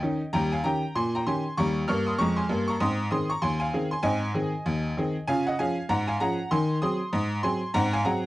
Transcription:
Already playing: D#5 G5
0.03 D#3 C#4 D#4
0.33 D#2 G3 G5 A#5
0.52 F5 G#5
0.64 D#3 C#4 G4 G5 A#5
0.95 A#2 G#5 C6
1.15 G5 A#5
1.27 D#3 C#4 G4 G#5 C6
1.57 D#2 G3 A#5 C#6
1.88 G2 A#3 C#6 F6
2.06 C6 D#6
2.19 F2 G#3 A#5 C#6
2.36 G#5 C6
2.49 G2 A#3
2.68 A#5 C#6
2.80 G#2 C4 C6 D#6
3.11 D#3 C4 G#4 C6 D#6
3.30 A#5 C#6
3.42 D#2 G#5 C6
3.60 F5 G#5
3.74 D#3 C4 G#4
3.91 G#5 C6
4.03 G#2 C4 D#5 G#5
4.34 D#3 C4 G#4
4.66 D#2
4.97 D#3 C4 G#4
5.28 C#3 F4 F5 G#5
5.47 D#5 F#5
5.59 F3 C#4 G#4 F5 G#5
5.89 G#2 F#5 A#5
6.08 F5 G#5
6.20 F3 C#4 G#4 F#5 A#5
6.51 D#3 G#5 C6
6.82 F#3 C4 G#4 C6 D#6
7.13 G#2
7.43 F#3 C4 G#4 G#5 C6
7.74 G#2 C4 F#5 A#5
7.93 F5 G#5
8.05 F#3 C4 G#4 F#5 A#5

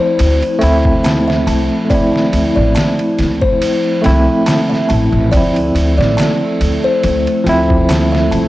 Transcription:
Already playing: F3 A3 C4 E4
0.00 C5
0.19 D2, ride
0.42 ride
0.59 D2 A3 C4, ride
0.63 E4
0.85 kick
1.04 A5, snare, ride, shaker
1.28 E5, snare
1.47 C2 A5, ride
1.85 A3
1.89 C4 D5, kick, ride
1.94 E4
2.16 snare
2.33 D2, ride
2.56 A1 D5
2.75 A5, snare, ride, shaker
2.99 ride
3.19 D2, snare, ride
3.41 C5, kick
3.62 ride
4.02 C2 A3 C4, ride
4.06 E4, snare
4.46 A5, snare, ride, shaker
4.70 E5, snare
4.89 A1 A5, ride
5.12 A1
5.28 F3 A3 A4 D5
5.33 D2 C4, kick, ride
5.37 E4
5.56 ride
5.75 D2, ride
5.98 A1 D5, snare
6.17 A5, snare, ride, shaker
6.61 D2, ride
6.84 C5
7.03 D2, ride
7.27 ride
7.44 D2 F3 C4, ride
7.49 E4
7.70 kick
7.89 A5, snare, ride, shaker
8.12 E5, snare
8.31 C2 A5, ride

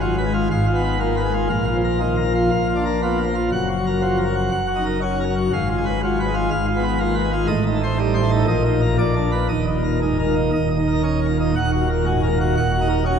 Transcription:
Already playing: G#1 G#2
0.01 F#3 F4
0.18 B4
0.26 G#3
0.34 F4
0.50 G#1 G#2 F5
0.67 F4
0.75 B3
0.84 B4
1.00 A#3 F4
1.17 B4
1.25 G#3
1.34 F4
1.49 A#1 A#2 F5
1.66 F4
1.76 F3
1.84 A#4
2.00 D#3 F4
2.17 A#4
2.27 F3
2.35 F4
2.51 A#1 A#2 F5
2.69 F4
2.76 D4
2.86 A#4
3.02 B3 F4
3.18 A#4
3.25 F3
3.35 F4
3.52 F#1 F#2 F#5
3.70 F#4
3.78 F#3
3.86 A#4
4.02 F3 F#4
4.18 A#4
4.26 F#3
4.35 F#4
4.51 F#1 F#2 F#5
4.68 F#4
4.76 D#4
4.86 A#4
5.02 C#4 F#4
5.20 A#4
5.29 F#3
5.37 F#4
5.53 G#1 G#2 F5
5.69 F4
5.77 G#3
5.85 B4
6.03 F#3 F4
6.20 B4
6.27 G#3
6.34 F4
6.50 G#1 G#2 F5
6.67 F4
6.76 B3
6.83 B4
7.00 A#3 F4
7.15 B4
7.24 G#3
7.32 F4
7.47 A1 A2 D#5
7.66 D#4
7.75 A3
7.83 C5
7.99 G3 D#4
8.14 C5
8.23 A3
8.31 D#4
8.47 A#1 A#2 D#5
8.65 D#4
8.82 A#4
8.99 A#1 A#2 D5
9.16 D4
9.32 B4
9.49 D#1 D#2 D#5
9.67 D#4
9.75 A#2
9.84 A#4
10.02 G#2 D#4
10.19 A#4
10.27 A#2
10.35 D#4
10.52 D#1 D#2 D#5
10.70 D#4
10.78 D#4
10.88 A#4
11.03 C#4 D#4
11.22 A#4
11.30 A#2
11.40 D#4
11.56 D#1 D#2 F#5
11.73 F#4
11.81 A#2
11.90 A#4
12.06 G#2 F#4
12.23 A#4
12.32 A#2
12.41 F#4
12.57 D#1 D#2 F#5
12.73 F#4
12.81 D#4
12.89 A#4
13.06 C#4 F#4

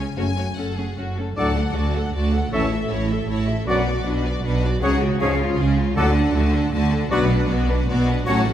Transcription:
Already playing: C#2 C#3 G#5
0.16 F#1 F#2 C#3 A3 C#4 F#4 C#5 G#5
0.37 A3 C#4 F#4 C#5
0.57 F#1 F#2 A3 C#4 A4 F#5
0.77 A3 C#4 G#4
0.98 F#1 F#2 A3 C#4 F#4
1.18 A3 C#4 A4
1.37 D2 A2 F#3 D4 F#4 A4 D5 F#5 A5
1.58 A4 F#5
1.75 D2 F#4 D5 A5
1.95 A4 F#5
2.15 D2 F#4 D5 A5
2.34 A4 F#5
2.52 A1 A2 E3 C#4 E4 A4 C#5 E5 A5
2.72 A4 E5
2.91 A1 A2 E4 C#5 A5
3.10 A4 E5
3.29 A1 A2 E4 C#5 A5
3.48 A4 E5
3.67 B1 F#2 B2 F#3 B3 D4 F#4 B4 D5 F#5
3.87 F#4 D5
4.06 B1 B2 D4 B4 F#5
4.26 F#4 D5
4.44 B1 B2 D4 B4 F#5
4.63 F#4 D5
4.81 C#2 G#2 C#3 F#3 C#4 G#4 C#5 F#5
5.00 F#4 C#5
5.19 C#2 G#2 C#3 F3 C#4 G#4 C#5 F5
5.40 F4 C#5
5.58 C#2 C#3 C#4 G#4 F5
5.77 F4 C#5
5.97 D2 A2 D3 F#3 A3 D4 F#4 A4 D5 F#5 A5
6.16 D4 A4 F#5
6.34 D2 D3 A3 F#4 A5
6.54 D4 A4 F#5
6.73 D2 D3 A3 F#4 A5
6.92 D4 A4 F#5
7.11 B1 F#2 B2 F#3 B3 D4 F#4 B4 D5 F#5
7.31 D4 B4 F#5
7.50 B1 B2 B3 F#4 D5
7.70 D4 B4 F#5
7.88 B1 B2 B3 F#4 D5
8.08 D4 B4 F#5
8.25 A1 A2 F#3 A3 C#4 F#4 C#5 F#5 A5
8.46 C#4 A4 F#5

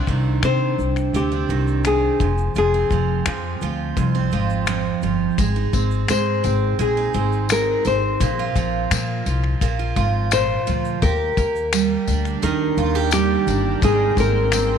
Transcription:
Already playing: C3 D4
0.07 C2 D#3, kick, shaker
0.42 C3 C5, finger snap, shaker
0.78 C2, shaker
0.96 finger snap, shaker
1.13 D2 C3 G4, shaker
1.32 D4
1.49 C2 D#3, shaker
1.67 shaker
1.84 C3 G#4, finger snap, shaker
2.20 F1 F2, kick, shaker
2.38 shaker
2.55 F1 F2 G#4, shaker
2.74 C4
2.90 F1 F3, kick, shaker
3.26 F2, finger snap, shaker
3.61 D2 F3, shaker
3.97 C2 F2, kick, shaker
4.15 C4
4.31 G#1 F3, shaker
4.50 shaker
4.67 F2, finger snap, shaker
5.02 G1 F3, shaker
5.38 G#1 G#3, kick, tambourine, shaker
5.56 D#4
5.73 G#1 C4, kick, tambourine, shaker
5.91 shaker
6.08 G#2 G#3 C5, finger snap, tambourine, shaker
6.44 G#1 C4, tambourine, shaker
6.79 A#1 G#3 G#4, shaker
6.97 D#4
7.14 G#1 C4, shaker
7.32 shaker
7.49 G#3 A#4, finger snap, tambourine, shaker
7.85 G#1 C4 C5, tambourine, shaker
8.20 A#1 A#2, kick, tambourine, shaker
8.39 F4
8.55 A#1 F3, kick, tambourine, shaker
8.91 A#2, finger snap, tambourine, shaker
9.26 C2 F3, tambourine, shaker
9.44 finger snap
9.61 A#1 A#2, kick, tambourine, shaker
9.79 F4
9.96 G#1 F3, kick, tambourine, shaker
10.31 A#2 C5, finger snap, tambourine, shaker
10.67 D2 F3, tambourine, shaker
10.85 shaker
11.02 D#2 G3 A#3 D4 G4 A#4 G5, kick, tambourine, shaker
11.37 D#2 A#3, kick, tambourine, shaker
11.56 shaker
11.73 G3, finger snap, tambourine, shaker
12.07 D2 D4, tambourine, shaker
12.25 finger snap, shaker
12.42 D#2 D#3 A#4, tambourine, shaker
12.77 D#2 F4, shaker
12.95 G4
13.11 G3 G4, finger snap, tambourine, shaker
13.47 G1 D4, tambourine, shaker
13.82 G#1 D#3 G#3 C4 G#4 C5, kick, tambourine, shaker
14.17 G#1 C4 A#4, kick, tambourine, shaker
14.52 C4, finger snap, tambourine, shaker

